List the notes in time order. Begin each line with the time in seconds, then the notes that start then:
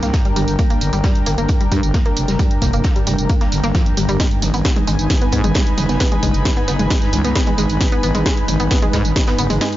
Already playing: G2 D4 A#4 G5 A#5
0.03 C2 A#3, snare, closed hi-hat, tambourine
0.13 kick, snare, closed hi-hat, tambourine
0.25 G3, closed hi-hat
0.36 G1 G3, closed hi-hat, open hi-hat, tambourine
0.48 G1, closed hi-hat, tambourine
0.59 A#3, kick, closed hi-hat, tambourine
0.70 A#3, open hi-hat
0.81 G1, closed hi-hat, open hi-hat, tambourine
0.93 G1 G3, closed hi-hat, tambourine
1.04 G3, kick, snare, closed hi-hat, tambourine
1.15 closed hi-hat
1.26 G1 A#3, closed hi-hat, open hi-hat, tambourine
1.38 G1 A#3, closed hi-hat, tambourine
1.48 kick, closed hi-hat, tambourine
1.61 G3, closed hi-hat
1.72 G2 G3, kick, closed hi-hat, open hi-hat, tambourine
1.83 G1, closed hi-hat, tambourine
1.94 A#3, kick, snare, closed hi-hat, tambourine
2.06 A#3, closed hi-hat
2.16 F1, closed hi-hat, open hi-hat, tambourine
2.28 F1 G3, snare, closed hi-hat, tambourine
2.39 G3, kick, closed hi-hat, tambourine
2.51 closed hi-hat
2.62 F1 A#3, kick, closed hi-hat, open hi-hat, tambourine
2.73 F1 A#3, closed hi-hat, tambourine
2.84 kick, snare, closed hi-hat, tambourine
2.96 G3, closed hi-hat
3.07 F1 G3, closed hi-hat, open hi-hat, tambourine
3.18 F1, closed hi-hat, tambourine
3.29 A#3, kick, closed hi-hat, tambourine
3.41 A#3, snare, closed hi-hat
3.52 G1, closed hi-hat, open hi-hat, tambourine
3.64 G1 A#3, snare, closed hi-hat, tambourine
3.75 F3, kick, snare, closed hi-hat, tambourine
3.86 closed hi-hat
3.97 G1 G3, closed hi-hat, open hi-hat, tambourine
4.08 G1 G3, closed hi-hat, tambourine
4.20 G#3 D#4, kick, snare, closed hi-hat, tambourine
4.26 G#5
4.31 open hi-hat
4.42 G#1 B4, closed hi-hat, open hi-hat, mid tom, tambourine
4.54 G#1 B3, closed hi-hat, tambourine
4.63 B3 B5, kick, snare, closed hi-hat, tambourine
4.76 G#3, closed hi-hat, mid tom
4.87 G#1 G#3, closed hi-hat, open hi-hat, tambourine
4.99 G#1, closed hi-hat, tambourine
5.10 kick, snare, closed hi-hat, mid tom, tambourine
5.21 B3, closed hi-hat
5.32 G#2 B3, kick, closed hi-hat, open hi-hat, tambourine
5.44 G#1 G#3, closed hi-hat, mid tom, tambourine
5.54 G#3, kick, snare, closed hi-hat, tambourine
5.67 closed hi-hat
5.78 F#1, closed hi-hat, open hi-hat, mid tom, tambourine
5.89 F#1 B3, snare, closed hi-hat, tambourine
6.00 B3, kick, snare, closed hi-hat, tambourine
6.12 G#3, closed hi-hat, mid tom
6.23 F#1 G#3, kick, closed hi-hat, open hi-hat, tambourine
6.34 F#1, closed hi-hat, tambourine
6.45 kick, snare, closed hi-hat, mid tom, tambourine
6.57 B3, closed hi-hat
6.68 F#1 B3, closed hi-hat, open hi-hat, tambourine
6.79 F#1 G#3, closed hi-hat, mid tom, tambourine
6.90 G#3, kick, snare, closed hi-hat, tambourine
7.02 snare, closed hi-hat
7.13 C#2, closed hi-hat, open hi-hat, mid tom, tambourine
7.24 C#2 B3, snare, closed hi-hat, tambourine
7.35 B3, kick, snare, closed hi-hat, tambourine
7.47 G#3, closed hi-hat, mid tom
7.58 G#1 G#3, closed hi-hat, open hi-hat, tambourine
7.70 G#1, closed hi-hat, tambourine
7.80 kick, snare, closed hi-hat, mid tom, tambourine
7.92 B3, open hi-hat
8.03 G#1 B3, closed hi-hat, open hi-hat, tambourine
8.15 G#1 G#3, closed hi-hat, mid tom, tambourine
8.26 G#3, kick, snare, closed hi-hat, tambourine
8.37 closed hi-hat
8.48 G#1, closed hi-hat, open hi-hat, mid tom, tambourine
8.60 G#1 B3, closed hi-hat, tambourine
8.71 B3, kick, snare, closed hi-hat, tambourine
8.82 G#3, closed hi-hat, mid tom
8.93 G#2 G#3, kick, snare, closed hi-hat, open hi-hat, tambourine
9.05 G#1, closed hi-hat, tambourine
9.16 kick, snare, closed hi-hat, mid tom, tambourine
9.27 B3, snare, closed hi-hat
9.38 F#1 B3, open hi-hat, tambourine
9.50 F#1 G#3, closed hi-hat, mid tom, tambourine
9.61 G#3, snare, closed hi-hat, tambourine
9.73 open hi-hat